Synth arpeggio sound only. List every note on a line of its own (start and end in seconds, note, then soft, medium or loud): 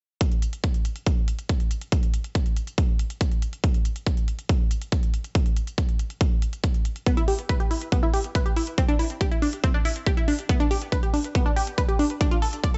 7.06 7.16 B3 loud
7.17 7.23 E4 loud
7.28 7.34 G4 medium
7.49 7.53 B4 loud
7.60 7.69 G4 medium
7.71 7.77 E4 medium
7.92 8.01 B3 loud
8.03 8.09 E4 loud
8.14 8.20 G4 medium
8.35 8.39 B4 medium
8.46 8.55 G4 medium
8.56 8.63 E4 medium
8.78 8.87 C4 loud
8.89 8.95 D4 loud
8.99 9.06 E4 medium
9.21 9.24 G4 loud
9.32 9.41 E4 medium
9.42 9.48 D4 medium
9.64 9.73 C4 loud
9.74 9.81 D4 medium
9.85 9.91 E4 medium
10.06 10.10 G4 loud
10.17 10.27 E4 medium
10.28 10.34 D4 medium
10.49 10.59 B3 loud
10.60 10.66 D4 loud
10.71 10.77 G4 medium
10.92 10.96 B4 loud
11.03 11.12 G4 medium
11.14 11.20 D4 medium
11.35 11.44 B3 loud
11.46 11.52 D4 loud
11.56 11.63 G4 medium
11.78 11.82 B4 loud
11.89 11.98 G4 medium
11.99 12.06 D4 medium
12.21 12.30 D4 loud
12.31 12.38 F4 loud
12.42 12.48 A4 medium
12.64 12.67 D5 loud
12.74 12.78 A4 medium